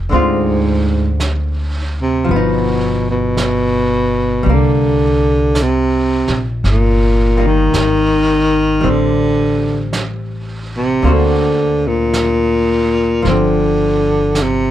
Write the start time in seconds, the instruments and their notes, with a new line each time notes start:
Already playing: hollow-body jazz guitar F3 A3 D4
0.09 upright bass D2, hollow-body jazz guitar D3 G#3 C4, brush sweep
0.14 baritone saxophone G#2, hollow-body jazz guitar F4
1.20 brush sweep, snare, hi-hat pedal
2.02 baritone saxophone C3
2.25 hollow-body jazz guitar F3, brush sweep
2.29 upright bass G1, hollow-body jazz guitar B3
2.36 baritone saxophone B2, hollow-body jazz guitar D#4
3.11 baritone saxophone B2
3.37 brush sweep, snare, hi-hat pedal
4.43 upright bass C2, hollow-body jazz guitar G3, brush sweep
4.49 baritone saxophone D3, hollow-body jazz guitar A#3
5.55 brush sweep, snare, hi-hat pedal
5.62 baritone saxophone C3
6.27 upright bass A#1, snare
6.64 upright bass G1, brush sweep, snare
6.72 baritone saxophone A#2
7.37 hollow-body jazz guitar G3 A#3 D#4
7.47 baritone saxophone D#3
7.73 upright bass G#1, brush sweep, snare, hi-hat pedal
8.81 upright bass A1, hollow-body jazz guitar G3 C4, brush sweep
8.90 baritone saxophone D3
9.93 brush sweep, snare, hi-hat pedal
10.77 baritone saxophone C3
11.02 upright bass D2, hollow-body jazz guitar D3 A#3 C4, brush sweep
11.07 hollow-body jazz guitar F#4
11.12 baritone saxophone D3
11.87 baritone saxophone A#2
12.13 brush sweep, snare, hi-hat pedal
13.22 upright bass G1, hollow-body jazz guitar F3, brush sweep, snare
13.28 baritone saxophone D3, hollow-body jazz guitar C4
14.35 brush sweep, snare, hi-hat pedal
14.42 baritone saxophone C3